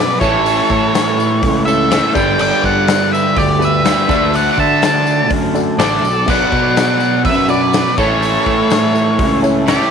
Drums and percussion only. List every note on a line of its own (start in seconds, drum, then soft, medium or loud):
0.21 kick loud
0.21 tambourine medium
0.46 open hi-hat medium
0.46 tambourine medium
0.70 kick medium
0.70 tambourine soft
0.94 snare loud
0.94 open hi-hat medium
0.94 tambourine loud
1.20 tambourine medium
1.43 kick loud
1.43 open hi-hat medium
1.43 tambourine soft
1.68 tambourine medium
1.91 snare loud
1.91 open hi-hat medium
1.91 tambourine loud
2.15 kick loud
2.15 tambourine medium
2.39 tambourine medium
2.39 crash loud
2.64 kick medium
2.64 tambourine soft
2.88 snare loud
2.88 open hi-hat medium
2.88 tambourine loud
3.14 tambourine medium
3.36 kick loud
3.36 open hi-hat medium
3.36 tambourine soft
3.62 tambourine medium
3.85 snare loud
3.85 open hi-hat medium
3.85 tambourine medium
4.09 kick loud
4.09 tambourine medium
4.34 open hi-hat medium
4.34 tambourine medium
4.58 kick medium
4.58 tambourine soft
4.82 snare loud
4.82 open hi-hat medium
4.82 tambourine loud
5.07 tambourine medium
5.30 kick loud
5.30 open hi-hat medium
5.30 tambourine soft
5.55 tambourine medium
5.79 snare loud
5.79 open hi-hat medium
5.79 tambourine medium
6.05 tambourine medium
6.28 kick loud
6.28 tambourine medium
6.28 crash loud
6.52 kick medium
6.52 tambourine soft
6.77 snare loud
6.77 open hi-hat medium
6.77 tambourine medium
7.00 tambourine medium
7.25 kick loud
7.25 open hi-hat medium
7.25 tambourine soft
7.49 tambourine medium
7.73 snare loud
7.73 open hi-hat medium
7.73 tambourine medium
7.98 kick loud
7.98 tambourine medium
8.22 open hi-hat medium
8.22 tambourine medium
8.46 kick medium
8.46 tambourine soft
8.70 snare loud
8.70 open hi-hat medium
8.70 tambourine medium
8.95 tambourine medium
9.19 kick loud
9.19 open hi-hat medium
9.19 tambourine soft
9.44 tambourine medium
9.67 snare loud
9.67 open hi-hat medium
9.67 tambourine medium